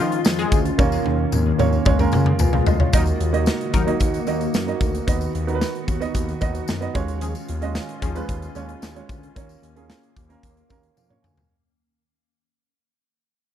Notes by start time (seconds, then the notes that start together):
Already playing: D#3 G#3 C#4 F4 C#5 D#5
0.00 D#3 F3 F4
0.12 closed hi-hat
0.25 F2, snare, tambourine
0.39 G#3 G#4, closed hi-hat
0.52 D2, kick, closed hi-hat, tambourine
0.65 closed hi-hat, tambourine
0.78 D#2 D#3 A#3 C#4 F4 C#5, kick, high tom, tambourine
0.92 tambourine
1.06 D#2, high tom
1.32 D#2, mid tom, tambourine
1.58 D#2 A#3 C#4 F4 C#5, mid tom, tambourine
1.73 tambourine
1.85 C#2 C#3 G#3 C#4 F4 C#5, kick, mid tom, tambourine
1.99 G#3 C#4 F4 A#4, mid tom, tambourine
2.12 C#3, mid tom, tambourine
2.26 mid tom
2.39 C#2 B4 G#5, floor tom, tambourine
2.53 G#4 F5, floor tom
2.66 D2 D#5, floor tom, tambourine
2.80 F4 C#5, floor tom
2.93 D#2 D#3 F#3 A#3 D#4 F#4 A#4 D#5, kick, closed hi-hat, tambourine
3.06 closed hi-hat, tambourine
3.20 D#2, closed hi-hat
3.33 A#3 D#4 F#4 D#5, closed hi-hat
3.46 snare, tambourine
3.61 closed hi-hat
3.73 D#2 F#3 D#4 A#4, kick, closed hi-hat, tambourine
3.86 A#3 D#4 F#4 D#5, closed hi-hat
4.00 D#2, kick, closed hi-hat, tambourine
4.14 closed hi-hat, tambourine
4.27 D#2 A#3 D#4 F#4 D#5, closed hi-hat, tambourine
4.41 closed hi-hat, tambourine
4.54 F#2, snare, tambourine
4.67 A#3 D#4 F#4 D#5, closed hi-hat
4.81 D2, kick, closed hi-hat, tambourine
4.94 closed hi-hat, tambourine
5.07 D#2 B3 D#4 F#4 D#5, kick, closed hi-hat, tambourine
5.21 closed hi-hat, tambourine
5.35 D#2, closed hi-hat
5.47 B3 D#4 F#4 A#4, closed hi-hat
5.55 B4
5.61 snare, tambourine
5.75 closed hi-hat
5.88 D#2, kick, closed hi-hat, tambourine
6.00 B3 D#4 F#4 D#5, closed hi-hat, tambourine
6.14 D#2, kick, closed hi-hat, tambourine
6.29 closed hi-hat, tambourine
6.41 D#2 B3 D#4 F#4 D#5, kick, closed hi-hat, tambourine
6.55 closed hi-hat, tambourine
6.68 F#2, snare, tambourine
6.81 B3 D#4 F#4 D#5, closed hi-hat
6.94 D#2 G#3 C#4 F4 C#5, kick, closed hi-hat, tambourine
7.08 closed hi-hat, tambourine
7.21 F3 C#4 G#4, closed hi-hat, tambourine
7.35 closed hi-hat, tambourine
7.49 D#2, closed hi-hat
7.61 G#3 C#4 F4 D#5, closed hi-hat
7.75 snare, tambourine
7.89 closed hi-hat
8.02 D#2 F3 C#4 G#4, kick, closed hi-hat, tambourine
8.15 G#3 C#4 F4 B4, closed hi-hat, tambourine
8.29 D#2, kick, closed hi-hat, tambourine
8.42 closed hi-hat, tambourine
8.55 D#2 G#3 C#4 F4 C#5, closed hi-hat, tambourine
8.69 closed hi-hat
8.82 D#2, snare, tambourine
8.95 G#3 C#4 F4 C#5, closed hi-hat
9.09 D2, kick, closed hi-hat, tambourine
9.23 closed hi-hat
9.36 D#2 A#3 C#4 F4 C#5, kick, closed hi-hat, tambourine
9.49 closed hi-hat, tambourine
9.63 D#2, closed hi-hat
9.76 A#3 C#4 F4 G#4, closed hi-hat
9.90 snare, tambourine
10.03 closed hi-hat
10.17 D#2, kick, closed hi-hat, tambourine
10.29 A#3 C#4 F4 A#4, closed hi-hat
10.43 D#2, kick, closed hi-hat, tambourine
10.57 closed hi-hat
10.69 D#2 A#3 C#4 F4 A#4, kick, closed hi-hat, tambourine
10.83 closed hi-hat
10.97 F2 F5, high tom, tambourine
11.09 A#3 C#4 F4 C#5, mid tom
11.23 D2 G#5, mid tom, tambourine
11.37 floor tom, tambourine